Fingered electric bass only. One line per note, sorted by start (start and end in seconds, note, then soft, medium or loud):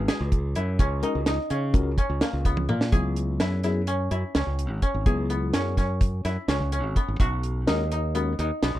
0.20 0.54 C#2 medium
0.56 0.78 F#2 medium
0.79 1.02 C#2 medium
1.15 1.38 C#2 medium
1.50 1.73 C#3 medium
1.74 1.97 C#2 medium
2.10 2.21 C#2 medium
2.33 2.67 C#2 medium
2.69 2.92 A#2 medium
2.93 3.38 C#2 medium
3.40 4.08 F#2 medium
4.11 4.22 F#2 medium
4.35 4.46 C#2 medium
4.47 4.71 C#2 medium
4.71 4.82 G#1 medium
4.94 5.05 G#1 medium
5.06 5.51 C#2 medium
5.53 6.21 F#2 medium
6.25 6.36 F#2 medium
6.48 6.60 C#2 medium
6.60 6.84 C#2 medium
6.84 6.96 G#1 medium
7.08 7.19 G#1 medium
7.20 7.65 B1 medium
7.68 8.35 D#2 medium
8.39 8.50 D#2 medium
8.63 8.74 B1 medium
8.75 8.79 B1 medium